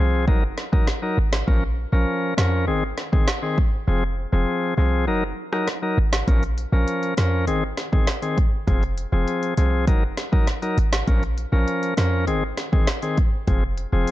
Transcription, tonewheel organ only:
0.00 0.25 F3 medium
0.00 0.25 C4 medium
0.00 0.25 G#4 medium
0.27 0.43 F#3 medium
0.27 0.44 D#4 medium
0.27 0.44 A#4 loud
0.72 0.88 F#3 medium
0.72 0.89 D#4 medium
0.72 0.89 A#4 medium
1.02 1.18 F#3 medium
1.02 1.19 D#4 medium
1.02 1.19 A#4 medium
1.47 1.63 F3 medium
1.47 1.64 C#4 medium
1.47 1.64 A#4 loud
1.92 2.34 F3 medium
1.92 2.34 C#4 medium
1.92 2.34 A#4 medium
2.37 2.65 F3 medium
2.37 2.65 C#4 medium
2.37 2.65 A#4 medium
2.67 2.83 D#3 medium
2.67 2.84 C4 medium
2.67 2.84 G#4 loud
3.12 3.28 D#3 medium
3.12 3.29 C4 medium
3.12 3.29 G#4 medium
3.42 3.58 D#3 medium
3.42 3.59 C4 medium
3.42 3.59 G#4 medium
3.87 4.03 F3 medium
3.87 4.04 C4 medium
3.87 4.04 G#4 loud
4.32 4.74 F3 medium
4.32 4.74 C4 medium
4.32 4.74 G#4 medium
4.77 5.05 F3 medium
4.77 5.05 C4 medium
4.77 5.05 G#4 medium
5.07 5.23 F#3 medium
5.07 5.24 D#4 medium
5.07 5.24 A#4 loud
5.52 5.68 F#3 medium
5.52 5.69 D#4 medium
5.52 5.69 A#4 medium
5.82 5.98 F#3 medium
5.82 5.99 D#4 medium
5.82 5.99 A#4 medium
6.27 6.43 F3 medium
6.27 6.44 C#4 medium
6.27 6.44 A#4 loud
6.72 7.14 F3 medium
6.72 7.14 C#4 medium
6.72 7.14 A#4 medium
7.17 7.45 F3 medium
7.17 7.45 C#4 medium
7.17 7.45 A#4 medium
7.47 7.63 D#3 medium
7.47 7.63 C4 medium
7.47 7.64 G#4 loud
7.92 8.08 D#3 medium
7.92 8.09 C4 medium
7.92 8.09 G#4 medium
8.22 8.38 D#3 medium
8.22 8.39 C4 medium
8.22 8.39 G#4 medium
8.67 8.83 F3 medium
8.67 8.84 C4 medium
8.67 8.84 G#4 loud
9.12 9.54 F3 medium
9.12 9.54 C4 medium
9.12 9.54 G#4 medium
9.57 9.85 F3 medium
9.57 9.85 C4 medium
9.57 9.85 G#4 medium
9.87 10.03 F#3 medium
9.87 10.04 D#4 medium
9.87 10.04 A#4 medium
10.32 10.48 F#3 medium
10.32 10.48 D#4 medium
10.32 10.49 A#4 medium
10.62 10.78 F#3 medium
10.62 10.78 D#4 medium
10.62 10.79 A#4 medium
11.07 11.23 F3 medium
11.07 11.23 C#4 medium
11.07 11.24 A#4 loud
11.52 11.94 F3 medium
11.52 11.94 C#4 medium
11.52 11.94 A#4 medium
11.97 12.25 F3 medium
11.97 12.25 C#4 medium
11.97 12.25 A#4 medium
12.27 12.43 D#3 medium
12.27 12.43 C4 medium
12.27 12.44 G#4 medium
12.72 12.88 D#3 medium
12.72 12.89 C4 medium
12.72 12.89 G#4 medium
13.02 13.18 D#3 medium
13.02 13.19 C4 medium
13.02 13.19 G#4 medium
13.47 13.63 F3 medium
13.47 13.64 C4 medium
13.47 13.64 G#4 loud
13.93 14.11 F3 medium
13.93 14.11 C4 medium
13.93 14.11 G#4 medium

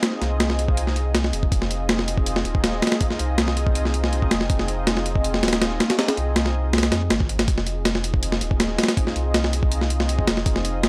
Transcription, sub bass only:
0.22 1.32 C2 medium
1.33 1.50 F1 medium
1.52 2.44 F1 loud
2.45 2.81 D#1 loud
3.20 4.30 C2 medium
4.31 4.48 F1 loud
4.50 5.42 F1 loud
5.43 5.79 D#1 loud
6.18 6.92 C2 medium
6.92 7.09 F2 medium
7.11 7.47 G#1 medium
7.48 8.40 F1 loud
8.41 8.77 D#1 loud
9.16 10.26 C2 medium
10.27 10.44 F1 loud
10.46 10.89 F1 loud

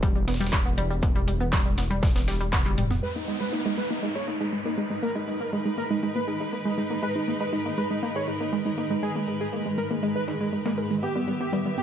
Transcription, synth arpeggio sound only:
0.03 0.14 G3 loud
0.15 0.20 G3 medium
0.28 0.36 B3 medium
0.40 0.52 G3 loud
0.53 0.58 G3 medium
0.65 0.74 B3 medium
0.78 0.89 G3 loud
0.90 0.95 G3 medium
1.03 1.11 B3 medium
1.15 1.27 G3 loud
1.28 1.33 G3 medium
1.40 1.49 B3 medium
1.53 1.64 G3 loud
1.66 1.70 G3 medium
1.78 1.86 B3 medium
1.90 2.02 G3 loud
2.03 2.08 G3 medium
2.16 2.24 B3 medium
2.28 2.39 G3 loud
2.41 2.45 G3 medium
2.53 2.61 B3 medium
2.66 2.77 G3 loud
2.78 2.83 G3 medium
2.91 2.99 B3 medium
3.03 3.08 G#3 medium
3.16 3.24 A#3 medium
3.28 3.39 G#3 medium
3.41 3.45 G#3 medium
3.53 3.61 A#3 medium
3.66 3.77 G#3 loud
3.78 3.83 G#3 medium
3.91 3.99 A#3 medium
4.03 4.14 G#3 loud
4.16 4.20 G#3 medium
4.28 4.36 A#3 medium
4.41 4.52 G#3 medium
4.53 4.58 G#3 medium
4.65 4.74 A#3 medium
4.78 4.89 G#3 loud
4.90 4.95 G#3 medium
5.03 5.11 A#3 medium
5.15 5.26 G#3 medium
5.28 5.33 G#3 medium
5.40 5.49 A#3 medium
5.53 5.64 G#3 medium
5.66 5.70 G#3 medium
5.78 5.86 A#3 medium
5.91 6.02 G#3 medium
6.03 6.08 G#3 medium
6.16 6.24 A#3 medium
6.28 6.39 G#3 medium
6.40 6.45 G#3 medium
6.53 6.61 A#3 medium
6.65 6.76 G#3 loud
6.78 6.83 G#3 medium
6.90 6.99 A#3 medium
7.03 7.14 G#3 loud
7.15 7.20 G#3 medium
7.28 7.36 A#3 medium
7.40 7.52 G#3 loud
7.53 7.58 G#3 medium
7.66 7.74 A#3 medium
7.78 7.89 G#3 medium
7.91 7.95 G#3 medium
8.03 8.11 A#3 medium
8.16 8.27 G#3 loud
8.28 8.33 G#3 medium
8.41 8.49 A#3 medium
8.53 8.64 G#3 medium
8.65 8.70 G#3 medium
8.78 8.86 A#3 medium
8.90 9.02 G#3 medium
9.03 9.08 G#3 medium
9.16 9.24 A#3 medium
9.28 9.39 G#3 medium
9.41 9.45 G#3 medium
9.53 9.61 A#3 medium
9.66 9.77 G#3 loud
9.78 9.83 G#3 medium
9.91 9.99 A#3 medium
10.03 10.14 G#3 loud
10.16 10.20 G#3 medium
10.28 10.36 D#4 medium
10.40 10.52 G#3 loud
10.53 10.61 G#3 medium
10.66 10.70 A#3 loud
10.78 10.86 A#4 medium
10.91 10.95 G#3 medium
11.03 11.11 B3 medium
11.15 11.26 G3 loud
11.28 11.33 G3 medium
11.40 11.49 B3 medium
11.53 11.64 G3 medium
11.65 11.70 G3 medium
11.78 11.83 B3 medium

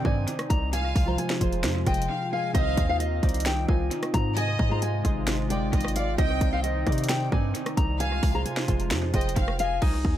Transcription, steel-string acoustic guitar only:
0.06 0.48 G#5 medium
0.50 0.70 A#5 medium
0.73 1.05 G#5 loud
1.08 1.17 A#5 medium
1.18 1.83 G#5 medium
1.87 2.30 G5 medium
2.33 2.52 F5 medium
2.54 2.87 D#5 loud
2.90 2.99 F5 medium
3.00 3.43 D#5 medium
3.46 3.66 G5 medium
3.69 4.11 G#5 medium
4.14 4.34 A#5 medium
4.37 4.69 G#5 loud
4.71 4.81 A#5 medium
4.82 5.46 G#5 medium
5.50 5.93 G5 medium
5.96 6.16 F5 medium
6.18 6.50 D#5 loud
6.53 6.63 F5 loud
6.63 7.06 D#5 medium
7.09 7.29 G5 medium
7.33 7.75 G#5 medium
7.77 7.97 A#5 medium
8.00 8.32 G#5 loud
8.35 8.45 A#5 medium
8.45 9.10 G#5 medium
9.14 9.57 G5 medium
9.60 9.80 F5 medium
9.81 10.14 D#4 loud

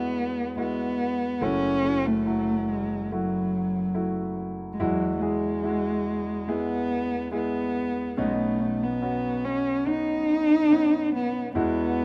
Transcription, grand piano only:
0.00 1.37 E2 soft
0.00 1.37 E3 soft
0.00 0.57 G#3 medium
0.00 0.57 E4 medium
0.00 0.58 F#4 medium
0.00 1.44 G#4 soft
0.57 1.37 G#3 soft
0.57 1.37 E4 soft
0.57 1.38 F#4 medium
1.41 4.75 F#1 soft
1.41 4.75 F#2 soft
1.41 1.81 A3 medium
1.41 1.81 E4 medium
1.41 1.82 F#4 medium
1.84 2.24 A3 soft
1.84 2.24 E4 soft
1.84 2.24 F#4 medium
2.26 3.06 F#3 medium
2.26 3.06 E4 soft
2.26 3.06 F#4 medium
3.12 3.91 A3 soft
3.12 3.91 E4 soft
3.12 3.92 F#4 medium
3.94 4.75 A3 medium
3.94 4.75 E4 soft
3.94 4.75 F#4 medium
4.80 8.14 E2 soft
4.80 8.14 E3 medium
4.80 5.20 G#3 medium
4.80 5.20 E4 medium
4.80 5.20 F#4 medium
5.21 5.62 G#3 soft
5.21 5.62 E4 soft
5.21 5.62 G#4 medium
5.63 6.44 G#3 medium
5.63 6.44 E4 soft
5.63 6.44 F#4 medium
6.48 7.28 G#3 medium
6.48 7.29 E4 medium
6.48 7.29 G#4 medium
7.32 8.12 G#3 medium
7.32 8.13 E4 soft
7.32 8.13 G#4 medium
8.17 11.51 B1 soft
8.17 11.51 B2 soft
8.17 8.57 B3 medium
8.17 8.57 C#4 medium
8.17 8.58 D#4 medium
8.60 9.00 B3 soft
8.60 9.00 C#4 soft
8.60 9.00 D#4 medium
9.01 9.82 B3 soft
9.01 9.82 C#4 soft
9.01 9.82 F#4 medium
9.86 10.66 B3 soft
9.86 10.67 C#4 soft
9.86 10.67 D#4 medium
10.71 11.51 B3 medium
10.71 11.51 C#4 soft
10.71 11.51 D#4 medium
11.55 12.05 E2 soft
11.55 12.05 E3 soft
11.55 12.05 G#3 medium
11.55 12.05 E4 medium
11.55 12.05 F#4 medium

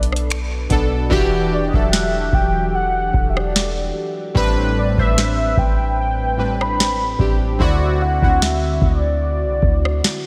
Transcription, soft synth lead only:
0.00 0.31 D5 medium
1.53 1.69 D5 medium
1.68 1.77 D#5 medium
1.75 2.36 E5 loud
2.34 2.74 G5 loud
2.75 3.31 F#5 loud
3.30 3.39 E5 medium
3.37 3.96 D5 medium
4.78 4.87 D5 medium
5.00 5.60 E5 medium
5.58 5.98 G5 loud
5.99 6.63 G5 loud
6.62 7.20 B5 loud
7.61 8.03 D5 medium
8.02 8.44 F#5 loud
8.42 8.84 E5 loud
8.83 10.26 D5 loud

